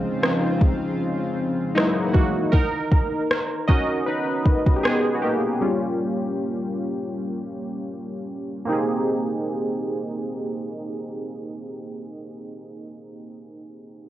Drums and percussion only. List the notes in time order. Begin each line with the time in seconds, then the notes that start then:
0.23 cross-stick
0.61 kick
1.78 cross-stick
2.15 kick
2.53 kick
2.92 kick
3.31 cross-stick
3.69 kick
4.46 kick
4.67 kick
4.85 cross-stick